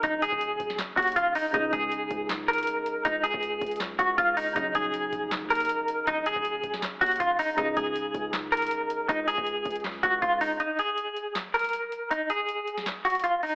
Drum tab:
HH |x---x---x---x---x---xxxxx---o---|x---x---x---x---x---xxxxx---x---|x---x---x---xxxxx---x---x---o---|x---x---x---x---x---xxxxx---x---|
CP |----------------x---------------|----------------x---------------|----------------x---------------|----------------x---------------|
SD |--------------o-o---------------|----------------o---------------|----------------o---------------|----------------o---------------|
BD |o-----o-----o-------o---o-------|o---o-------o-------------------|o-----o-----o-------o---o-------|o---o-------o-------------------|

HH |x---x---x---x---x---xxxxx---o---|x---x---x---x---x---xxxxx---x---|x---x---x---xxxxx---x---x---o---|x---x---x---x---x---xxxxx---x---|
CP |----------------x---------------|----------------x---------------|----------------x---------------|----------------x---------------|
SD |--------------o-o---------------|----------------o---------------|----------------o---------------|----------------o---------------|
BD |o-----o-----o-------o---o-------|o---o-------o-------------------|o-----o-----o-------o---o-------|--------------------------------|

HH |x---x---x---x---x---xxxxx---o---|
CP |----------------x---------------|
SD |--------------o-o---------------|
BD |--------------------------------|